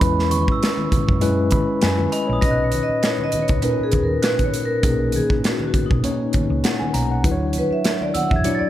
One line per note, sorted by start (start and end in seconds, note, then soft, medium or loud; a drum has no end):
0.00 0.47 E2 loud
0.00 1.21 G#3 medium
0.00 1.21 C#4 medium
0.00 1.22 E4 medium
0.00 0.02 B4 medium
0.00 0.92 B4 medium
0.00 0.45 B5 medium
0.00 kick loud
0.00 closed hi-hat medium
0.00 muted conga soft
0.19 snare soft
0.31 1.89 C#6 medium
0.31 closed hi-hat medium
0.31 high conga medium
0.48 2.06 E6 medium
0.48 kick loud
0.63 snare loud
0.63 closed hi-hat medium
0.63 muted conga soft
0.77 high conga medium
0.92 muted fingered electric bass stroke soft
0.92 kick medium
0.92 closed hi-hat medium
0.92 muted conga soft
0.92 high conga medium
0.92 low conga medium
1.08 1.54 F#2 medium
1.08 kick medium
1.08 low conga medium
1.21 2.12 G#3 medium
1.21 2.12 C#4 medium
1.21 2.12 E4 medium
1.21 1.81 B4 loud
1.21 closed hi-hat medium
1.21 muted conga soft
1.21 low conga medium
1.51 1.80 B5 medium
1.51 kick medium
1.51 closed hi-hat medium
1.51 muted conga soft
1.51 high conga medium
1.82 2.06 F#2 medium
1.82 2.11 B4 medium
1.82 2.10 G#5 medium
1.82 snare loud
1.82 closed hi-hat medium
1.99 high conga medium
2.12 2.40 D#5 medium
2.12 2.69 B5 medium
2.12 closed hi-hat medium
2.27 2.40 A#1 medium
2.27 2.57 C#5 medium
2.33 2.87 D#6 medium
2.40 2.78 B1 medium
2.40 3.32 A#2 medium
2.40 3.32 C#4 medium
2.40 3.32 D#4 medium
2.40 3.32 B4 medium
2.40 2.62 D#5 loud
2.40 4.00 A#6 medium
2.40 kick loud
2.40 closed hi-hat medium
2.51 3.03 F#6 soft
2.64 2.82 C#5 medium
2.72 closed hi-hat medium
2.72 muted conga soft
2.72 high conga medium
2.83 3.04 D#5 medium
2.89 muted fingered electric bass stroke soft
3.03 3.24 C#5 medium
3.03 snare loud
3.03 closed hi-hat medium
3.19 high conga medium
3.24 3.44 D#5 medium
3.32 muted fingered electric bass stroke soft
3.32 closed hi-hat medium
3.32 muted conga soft
3.32 high conga medium
3.42 3.63 C#5 medium
3.48 3.60 C#2 medium
3.48 kick medium
3.48 closed hi-hat soft
3.48 low conga medium
3.62 4.53 A#2 medium
3.62 4.53 C#4 medium
3.62 4.53 D#4 medium
3.62 3.70 A#4 medium
3.62 3.81 B4 medium
3.62 closed hi-hat medium
3.62 muted conga soft
3.62 low conga medium
3.70 4.57 B4 medium
3.80 4.04 G#4 medium
3.80 muted fingered electric bass stroke soft
3.92 4.16 D#2 medium
3.92 kick medium
3.92 closed hi-hat medium
3.92 high conga medium
4.03 4.24 A#4 medium
4.22 4.44 B4 medium
4.22 5.80 F#6 medium
4.22 snare loud
4.22 closed hi-hat medium
4.22 muted conga soft
4.39 kick medium
4.39 closed hi-hat soft
4.39 high conga medium
4.44 4.53 C#5 medium
4.54 closed hi-hat medium
4.54 muted conga soft
4.65 5.16 A#4 medium
4.83 5.19 B1 medium
4.83 5.73 A#3 medium
4.83 5.74 C#4 medium
4.83 5.74 D#4 medium
4.83 5.74 G#4 medium
4.83 kick loud
4.83 closed hi-hat medium
4.83 muted conga soft
5.12 5.29 G#4 medium
5.12 closed hi-hat medium
5.12 muted conga soft
5.12 high conga medium
5.30 muted fingered electric bass stroke soft
5.30 kick medium
5.44 5.66 F#4 medium
5.44 snare loud
5.44 closed hi-hat medium
5.60 high conga medium
5.68 5.86 F#4 medium
5.74 muted fingered electric bass stroke soft
5.74 kick medium
5.74 closed hi-hat medium
5.74 high conga medium
5.86 6.13 D#4 medium
5.91 6.01 B1 medium
5.91 kick medium
5.91 low conga medium
6.03 6.94 A#3 medium
6.03 6.94 C#4 medium
6.03 6.94 D#4 medium
6.03 6.94 C#5 medium
6.03 closed hi-hat medium
6.03 muted conga soft
6.03 low conga medium
6.33 muted fingered electric bass stroke soft
6.33 kick medium
6.33 closed hi-hat medium
6.33 high conga medium
6.50 6.61 C#2 medium
6.64 6.80 F#5 medium
6.64 snare loud
6.64 closed hi-hat medium
6.80 6.93 G#5 medium
6.80 high conga medium
6.94 7.25 B1 medium
6.94 7.09 A#5 medium
6.94 closed hi-hat medium
7.11 7.40 F#5 medium
7.24 7.60 D2 loud
7.24 8.14 F#3 medium
7.24 8.14 D4 medium
7.24 8.14 E4 medium
7.24 7.32 B4 medium
7.24 kick loud
7.24 closed hi-hat medium
7.24 muted conga soft
7.32 8.18 C#5 medium
7.53 closed hi-hat medium
7.53 muted conga soft
7.53 high conga medium
7.58 7.73 B4 medium
7.70 8.03 E5 medium
7.70 muted fingered electric bass stroke soft
7.85 snare loud
7.85 closed hi-hat medium
7.85 muted conga soft
8.01 8.14 D5 medium
8.01 high conga medium
8.14 8.32 F#5 loud
8.14 8.70 E6 medium
8.14 muted fingered electric bass stroke soft
8.14 closed hi-hat medium
8.14 high conga medium
8.30 8.42 E2 medium
8.30 8.43 E5 medium
8.30 kick loud
8.30 low conga medium
8.36 8.70 G#6 medium
8.44 8.70 F#3 medium
8.44 8.70 D4 medium
8.44 8.70 E4 medium
8.44 8.52 C#5 medium
8.44 8.70 D5 medium
8.44 closed hi-hat medium
8.44 muted conga soft
8.44 low conga medium
8.55 8.70 A6 medium
8.59 8.70 D5 medium
8.59 muted fingered electric bass stroke soft